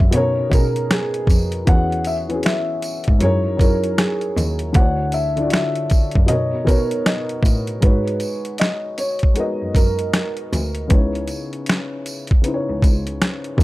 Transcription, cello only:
0, 0, Header, 1, 2, 480
1, 0, Start_track
1, 0, Tempo, 769231
1, 1044, Time_signature, 4, 2, 24, 8
1, 8508, End_track
2, 0, Start_track
2, 0, Title_t, "Cello"
2, 0, Program_c, 0, 42
2, 0, Note_on_c, 0, 42, 89
2, 78, Note_off_c, 0, 42, 0
2, 86, Note_on_c, 0, 47, 99
2, 224, Note_off_c, 0, 47, 0
2, 239, Note_on_c, 0, 47, 51
2, 303, Note_off_c, 0, 47, 0
2, 323, Note_on_c, 0, 47, 89
2, 542, Note_off_c, 0, 47, 0
2, 794, Note_on_c, 0, 41, 88
2, 1017, Note_off_c, 0, 41, 0
2, 1045, Note_on_c, 0, 40, 101
2, 1500, Note_off_c, 0, 40, 0
2, 1922, Note_on_c, 0, 44, 81
2, 1999, Note_off_c, 0, 44, 0
2, 2005, Note_on_c, 0, 42, 107
2, 2144, Note_off_c, 0, 42, 0
2, 2161, Note_on_c, 0, 42, 56
2, 2223, Note_off_c, 0, 42, 0
2, 2245, Note_on_c, 0, 42, 84
2, 2463, Note_off_c, 0, 42, 0
2, 2726, Note_on_c, 0, 39, 94
2, 2944, Note_off_c, 0, 39, 0
2, 2965, Note_on_c, 0, 38, 99
2, 3420, Note_off_c, 0, 38, 0
2, 3842, Note_on_c, 0, 42, 88
2, 3919, Note_off_c, 0, 42, 0
2, 3923, Note_on_c, 0, 47, 99
2, 4063, Note_off_c, 0, 47, 0
2, 4078, Note_on_c, 0, 47, 53
2, 4142, Note_off_c, 0, 47, 0
2, 4164, Note_on_c, 0, 47, 86
2, 4382, Note_off_c, 0, 47, 0
2, 4635, Note_on_c, 0, 45, 97
2, 4857, Note_off_c, 0, 45, 0
2, 4885, Note_on_c, 0, 44, 110
2, 5103, Note_off_c, 0, 44, 0
2, 6001, Note_on_c, 0, 42, 48
2, 6064, Note_off_c, 0, 42, 0
2, 6083, Note_on_c, 0, 42, 77
2, 6302, Note_off_c, 0, 42, 0
2, 6568, Note_on_c, 0, 38, 100
2, 6784, Note_off_c, 0, 38, 0
2, 6805, Note_on_c, 0, 37, 94
2, 7023, Note_off_c, 0, 37, 0
2, 7922, Note_on_c, 0, 37, 51
2, 7984, Note_off_c, 0, 37, 0
2, 8005, Note_on_c, 0, 37, 86
2, 8223, Note_off_c, 0, 37, 0
2, 8475, Note_on_c, 0, 39, 108
2, 8508, Note_off_c, 0, 39, 0
2, 8508, End_track
0, 0, End_of_file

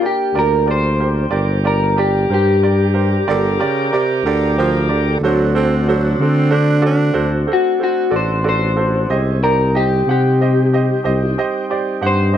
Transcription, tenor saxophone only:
0, 0, Header, 1, 2, 480
1, 0, Start_track
1, 0, Key_signature, -2, "minor"
1, 0, Tempo, 648649
1, 981, Time_signature, 12, 3, 24, 8
1, 9157, End_track
2, 0, Start_track
2, 0, Title_t, "Tenor saxophone"
2, 0, Program_c, 0, 66
2, 2442, Note_on_c, 0, 50, 86
2, 2672, Note_on_c, 0, 49, 78
2, 2683, Note_off_c, 0, 50, 0
2, 2901, Note_off_c, 0, 49, 0
2, 2910, Note_on_c, 0, 48, 77
2, 3140, Note_off_c, 0, 48, 0
2, 3150, Note_on_c, 0, 50, 86
2, 3380, Note_off_c, 0, 50, 0
2, 3394, Note_on_c, 0, 53, 80
2, 3636, Note_on_c, 0, 50, 68
2, 3647, Note_off_c, 0, 53, 0
2, 3863, Note_off_c, 0, 50, 0
2, 3876, Note_on_c, 0, 54, 88
2, 4103, Note_off_c, 0, 54, 0
2, 4112, Note_on_c, 0, 60, 76
2, 4341, Note_off_c, 0, 60, 0
2, 4358, Note_on_c, 0, 54, 81
2, 4603, Note_on_c, 0, 60, 78
2, 4614, Note_off_c, 0, 54, 0
2, 4823, Note_on_c, 0, 62, 89
2, 4834, Note_off_c, 0, 60, 0
2, 5056, Note_off_c, 0, 62, 0
2, 5074, Note_on_c, 0, 62, 78
2, 5418, Note_off_c, 0, 62, 0
2, 9157, End_track
0, 0, End_of_file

